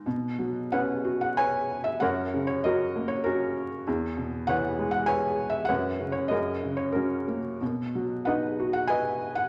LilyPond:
<<
  \new Staff \with { instrumentName = "Felt piano" } { \time 3/4 \key b \major \tempo 4 = 95 << { r4 fis''8. fis''16 gis''8. e''16 | fis''8. cis''16 dis''8. cis''16 ais'8. r16 | r4 fis''8. fis''16 gis''8. e''16 | fis''8. cis''16 dis''8. cis''16 ais'8. r16 |
r4 fis''8. fis''16 gis''8. fis''16 | } \\ { r4 <b' cis''>4 <b' cis''>4 | <ais' cis''>4 <fis' ais'>4 <cis' fis'>4 | r4 <b' cis''>4 <b' cis''>4 | <b' cis''>4 <gis' ais'>4 cis'4 |
r4 <b' dis''>4 <b' dis''>4 | } >> }
  \new Staff \with { instrumentName = "Felt piano" } { \clef bass \time 3/4 \key b \major b,8 fis8 cis'8 fis'4. | fis,8 cis8 fis8 ais4. | e,8 b,8 e8 gis4. | fis,8 cis8 fis,8 cis8 fis8 ais8 |
b,8 fis8 dis'8 fis'4. | }
>>